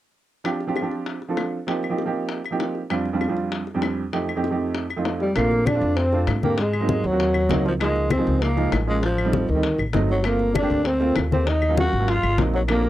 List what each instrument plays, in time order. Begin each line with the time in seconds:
0.44 grand piano F3 C4 D4 F4 G4, high bongo, claves
0.60 high bongo
0.67 grand piano F3 C4 D4 F4 G4
0.76 high bongo, claves
0.81 grand piano F3 C4 D4 F4 G4
0.91 high bongo
1.06 high bongo
1.22 high bongo
1.28 grand piano F3 C4 D4 F4 A4
1.37 high bongo, low bongo, claves
1.67 grand piano F3 A#3 C4 D#4 G4, high bongo
1.83 high bongo, claves
1.89 grand piano F3 A#3 C4 D#4 G4
1.98 high bongo
2.05 grand piano F3 A#3 C4 D#4 G4
2.29 high bongo
2.45 high bongo, claves
2.51 grand piano F3 A#3 C4 D#4 G4
2.60 high bongo, low bongo
2.75 high bongo
2.90 grand piano F2 G3 C4 D4 F4, high bongo, claves
3.06 high bongo
3.13 grand piano F2 G3 C4 D4 F4
3.21 high bongo, claves
3.28 grand piano F2 G3 C4 D4 F4
3.37 high bongo
3.52 high bongo
3.67 high bongo
3.74 grand piano F2 G3 C4 D4 G4
3.82 high bongo, low bongo, claves
4.13 grand piano F2 A3 C4 D#4 G4, high bongo
4.29 high bongo, claves
4.36 grand piano F2 A3 C4 D#4 G4
4.44 high bongo
4.50 grand piano F2 A3 C4 D#4 G4
4.75 high bongo
4.90 high bongo, claves
4.96 grand piano F2 A3 C4 D#4 F4
5.05 high bongo, low bongo
5.20 trombone G3, tenor saxophone G3, high bongo
5.35 upright bass A#1, grand piano A3 C4 D4 F4, trombone A#3, tenor saxophone A#3, high bongo, high conga, claves
5.51 high bongo, high conga
5.66 tenor saxophone D4, trombone D4, high bongo, high conga, claves
5.73 grand piano A3 C4 D4 F4
5.81 upright bass F2, high bongo, high conga
5.97 tenor saxophone C4, trombone C4, high bongo, high conga
6.12 grand piano A3 C4 D4 F4, high bongo, high conga
6.27 upright bass G#2, high bongo, low bongo, high conga, claves
6.42 grand piano A3 C4 D4 G4, trombone A#3, tenor saxophone A#3, high conga
6.58 trombone G#3, tenor saxophone G#3, high bongo, high conga
6.73 high bongo, high conga, claves
6.80 grand piano F#3 A#3 C4 D#4
6.89 high bongo, high conga
7.04 upright bass D#2, trombone F#3, tenor saxophone F#3, high conga
7.11 grand piano F#3 A#3 C4 F#4
7.20 high bongo, high conga
7.34 high bongo, high conga, claves
7.49 upright bass C#2, grand piano F#3 A#3 C4 D#4, high bongo, low bongo, high conga
7.65 trombone F3, tenor saxophone F3, high bongo, high conga
7.79 grand piano F3 G#3 A#3 D#4, trombone G#3, tenor saxophone G#3, high bongo, high conga, claves
7.96 high bongo, high conga
8.10 trombone C4, tenor saxophone C4, high bongo, high conga, claves
8.18 grand piano F3 G#3 A#3 D#4
8.27 upright bass C#2, high bongo, high conga
8.42 trombone A#3, tenor saxophone A#3, high bongo, high conga
8.56 grand piano F3 G#3 A#3 D#4, high bongo, high conga
8.72 upright bass A1, high bongo, low bongo, high conga, claves
8.86 grand piano F3 G#3 A#3 C#4, trombone G#3, tenor saxophone G#3
9.03 trombone F3, tenor saxophone F3, high bongo, high conga
9.18 high bongo, high conga, claves
9.24 grand piano G3 A3 C4 D#4
9.33 high bongo, high conga
9.48 upright bass D2, trombone D#3, tenor saxophone D#3, high conga
9.55 grand piano G3 A3 C4 D#4
9.63 high bongo, high conga
9.78 upright bass A1, high bongo, high conga, claves
9.93 upright bass G1, grand piano F#3 A3 C4 D#4, high bongo, low bongo, high conga
10.09 trombone F#3, tenor saxophone F#3, high bongo, high conga
10.24 grand piano A3 A#3 C4 F4, trombone A#3, tenor saxophone A#3, high bongo, high conga, claves
10.39 high bongo, high conga
10.54 trombone D4, high bongo, high conga, claves
10.58 grand piano A3, tenor saxophone D4
10.62 grand piano A#3 C4 G4
10.70 upright bass D2, high bongo, high conga
10.85 trombone C4, tenor saxophone C4, high bongo, high conga
10.99 grand piano A3 A#3 C4 F4, high bongo, high conga
11.16 upright bass D#2, high bongo, low bongo, high conga, claves
11.31 grand piano A3 A#3 C4 G4, trombone C4, tenor saxophone C4, high conga
11.47 trombone D#4, tenor saxophone D#4, high bongo, high conga
11.62 high bongo, high conga, claves
11.69 grand piano F#3 A#3 C#4 F4
11.77 trombone F#4, tenor saxophone F#4, high bongo, high conga
11.93 upright bass G#1, high conga
12.00 grand piano F#3 A#3 C#4 F4
12.08 trombone F4, tenor saxophone F4, high bongo, high conga
12.23 upright bass G#1, high bongo, high conga, claves
12.38 upright bass A#1, grand piano F#3 A#3 C4 D#4, high bongo, low bongo, high conga
12.54 trombone F#3, tenor saxophone F#3, high bongo, high conga
12.68 grand piano F3 A3 C4 D4, trombone A#3, tenor saxophone A#3, high bongo, high conga, claves
12.84 high bongo, high conga